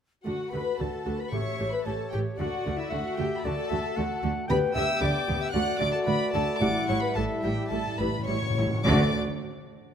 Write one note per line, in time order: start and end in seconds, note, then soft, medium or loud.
0.24 0.34 D2 soft
0.24 0.34 D3 soft
0.24 0.33 A3 soft
0.24 4.46 A3 soft
0.24 0.50 F#4 medium
0.24 0.33 F#4 soft
0.24 1.29 F#4 soft
0.24 0.51 F#4 soft
0.24 0.50 F#5 medium
0.51 0.61 D2 soft
0.51 0.61 D3 soft
0.51 0.61 A3 soft
0.51 0.61 F#4 soft
0.51 0.79 B4 medium
0.51 0.78 B5 medium
0.78 0.88 D2 soft
0.78 0.88 D3 soft
0.78 0.87 A3 soft
0.78 0.87 F#4 soft
0.78 1.19 A4 soft
0.78 1.19 A5 medium
1.05 1.14 D2 soft
1.05 1.14 D3 soft
1.05 1.14 A3 soft
1.05 1.13 F#4 soft
1.18 1.32 B4 medium
1.18 1.33 B4 soft
1.18 1.33 B5 medium
1.31 1.41 A1 soft
1.31 2.08 A2 medium
1.31 1.41 A2 soft
1.31 1.40 A3 soft
1.31 1.40 G4 soft
1.31 2.39 G4 soft
1.31 1.71 C#5 medium
1.31 1.72 C#5 medium
1.31 1.87 E5 soft
1.31 1.72 C#6 medium
1.59 1.68 A1 soft
1.59 1.67 A2 soft
1.59 1.67 A3 soft
1.59 1.67 G4 soft
1.71 1.78 B4 medium
1.71 1.86 B4 soft
1.71 1.85 B5 medium
1.83 1.95 A1 soft
1.83 1.95 A2 soft
1.83 1.94 A3 soft
1.83 1.94 G4 soft
1.83 2.11 A4 medium
1.83 1.94 A4 medium
1.83 2.39 C#5 soft
1.83 2.11 A5 medium
2.11 2.22 A1 medium
2.11 2.21 A2 soft
2.11 2.20 A3 soft
2.11 2.20 G4 soft
2.11 2.39 G4 medium
2.11 2.21 G4 medium
2.11 2.19 G5 medium
2.38 2.48 D2 medium
2.38 3.14 D3 medium
2.38 2.47 D3 medium
2.38 2.46 A3 medium
2.38 2.77 F#4 medium
2.38 2.47 F#4 medium
2.38 2.78 F#4 medium
2.38 4.50 F#4 soft
2.38 2.91 D5 medium
2.38 2.77 F#5 medium
2.66 2.75 D2 soft
2.66 2.74 D3 medium
2.66 2.74 A3 soft
2.66 2.74 F#4 soft
2.76 2.91 E4 medium
2.76 2.92 E4 medium
2.76 2.91 E5 medium
2.90 3.01 D2 medium
2.90 3.00 D3 medium
2.90 2.99 A3 soft
2.90 2.99 F#4 soft
2.90 3.17 F#4 medium
2.90 3.19 F#4 medium
2.90 3.46 E5 medium
2.90 3.18 F#5 medium
3.16 3.27 D2 medium
3.16 3.27 D3 soft
3.16 3.26 A3 soft
3.16 3.26 F#4 soft
3.16 3.44 G4 medium
3.16 3.26 G4 medium
3.16 3.37 G5 medium
3.37 3.44 B5 medium
3.44 3.53 D2 medium
3.44 3.52 D3 medium
3.44 3.54 A3 medium
3.44 3.53 F#4 medium
3.44 4.21 A4 medium
3.44 4.22 A4 medium
3.44 3.71 D5 medium
3.44 4.23 A5 medium
3.70 3.79 D2 medium
3.70 3.79 D3 medium
3.70 3.78 A3 medium
3.70 3.78 F#4 medium
3.70 3.98 E5 medium
3.96 4.06 D2 medium
3.96 4.06 D3 medium
3.96 4.05 A3 medium
3.96 4.05 F#4 medium
3.96 4.47 F#5 medium
4.23 4.31 D2 medium
4.23 4.31 D3 medium
4.23 4.31 A3 medium
4.23 4.31 F#4 medium
4.48 4.57 D2 medium
4.48 4.58 D3 medium
4.48 4.57 B3 medium
4.48 5.52 B3 medium
4.48 4.57 G4 medium
4.48 5.54 G4 medium
4.48 4.73 B4 medium
4.48 4.58 B4 medium
4.48 5.51 G5 medium
4.48 4.57 B5 medium
4.73 4.83 D2 medium
4.73 4.84 D3 medium
4.73 4.84 B3 medium
4.73 4.84 G4 medium
4.73 5.01 E5 medium
4.73 4.85 E5 medium
4.73 5.01 E6 medium
5.00 5.10 D2 medium
5.00 5.09 D3 medium
5.00 5.09 B3 medium
5.00 5.08 G4 medium
5.00 5.41 D5 medium
5.00 5.40 D6 medium
5.27 5.37 D2 medium
5.27 5.36 D3 medium
5.27 5.35 B3 medium
5.27 5.35 G4 medium
5.40 5.46 E5 medium
5.40 5.55 E5 medium
5.40 5.54 E6 medium
5.53 5.62 D2 medium
5.53 5.62 D3 medium
5.53 6.59 A3 medium
5.53 5.63 A3 medium
5.53 6.59 F#4 medium
5.53 5.63 F#4 medium
5.53 6.59 D5 medium
5.53 5.80 F#5 medium
5.53 5.79 F#6 medium
5.79 5.89 D2 medium
5.79 5.88 D3 medium
5.79 5.87 A3 medium
5.79 5.88 F#4 medium
5.79 5.94 D5 medium
5.79 5.95 D5 medium
5.79 5.93 D6 medium
5.93 5.99 A4 medium
5.93 6.08 A4 medium
5.93 5.98 A5 medium
6.05 6.15 D2 medium
6.05 6.15 D3 medium
6.05 6.14 A3 medium
6.05 6.14 F#4 medium
6.05 6.33 B4 medium
6.05 6.15 B4 medium
6.05 6.33 B5 medium
6.32 6.42 D2 medium
6.32 6.42 D3 medium
6.32 6.42 A3 medium
6.32 6.41 F#4 medium
6.32 6.60 A4 medium
6.32 6.43 A4 medium
6.32 6.60 A5 medium
6.60 6.69 A1 medium
6.60 6.69 A2 medium
6.60 7.39 A2 medium
6.60 6.69 G3 medium
6.60 8.57 G3 medium
6.60 6.68 E4 medium
6.60 8.57 E4 medium
6.60 6.87 D5 medium
6.60 6.69 D5 medium
6.60 7.18 F#5 medium
6.60 6.88 D6 medium
6.88 6.97 A1 medium
6.88 6.97 A2 medium
6.88 6.96 G3 medium
6.88 6.97 E4 medium
6.88 7.02 C#5 medium
6.88 6.94 C#5 medium
6.88 7.02 C#6 medium
7.00 7.07 B4 medium
7.00 7.16 B4 medium
7.00 7.15 B5 medium
7.15 7.24 A1 medium
7.15 7.23 A2 medium
7.15 7.24 G3 medium
7.15 7.24 E4 medium
7.15 7.21 A4 medium
7.15 7.43 A4 medium
7.15 7.98 E5 medium
7.15 7.23 A5 medium
7.42 7.52 A1 medium
7.42 7.51 A2 medium
7.42 7.52 G3 medium
7.42 7.52 E4 medium
7.42 7.70 G4 medium
7.42 7.51 G4 medium
7.42 7.70 G5 medium
7.70 7.79 A1 medium
7.70 7.77 A2 soft
7.70 7.79 A2 medium
7.70 7.78 G3 medium
7.70 7.78 E4 medium
7.70 7.76 A4 medium
7.70 7.98 A4 medium
7.70 7.98 A5 medium
7.78 7.86 A2 soft
7.87 7.94 A2 soft
7.96 8.07 A1 medium
7.96 8.01 A2 soft
7.96 8.07 A2 medium
7.96 8.07 E4 medium
7.96 8.27 B4 medium
7.96 8.05 B4 medium
7.96 8.27 B5 medium
8.00 8.09 A2 soft
8.00 8.08 G3 soft
8.10 8.18 A2 soft
8.19 8.25 A2 medium
8.26 8.36 A1 medium
8.26 8.33 A2 medium
8.26 8.36 A2 medium
8.26 8.36 G3 soft
8.26 8.36 E4 soft
8.26 8.84 C#5 medium
8.26 8.55 C#5 medium
8.26 8.84 C#6 medium
8.34 8.41 A2 medium
8.42 8.49 A2 medium
8.50 8.57 A2 medium
8.57 8.65 A1 medium
8.57 8.65 A2 medium
8.57 8.66 A2 medium
8.57 8.66 G3 soft
8.57 8.66 E4 soft
8.67 8.73 A2 medium
8.75 8.82 A2 medium
8.84 9.17 D2 medium
8.84 9.11 D3 medium
8.84 9.17 D3 medium
8.84 9.10 A3 medium
8.84 9.18 A3 medium
8.84 9.09 F#4 medium
8.84 9.10 F#4 medium
8.84 9.18 F#4 medium
8.84 9.16 D5 medium
8.84 9.17 D5 medium
8.84 9.17 D6 medium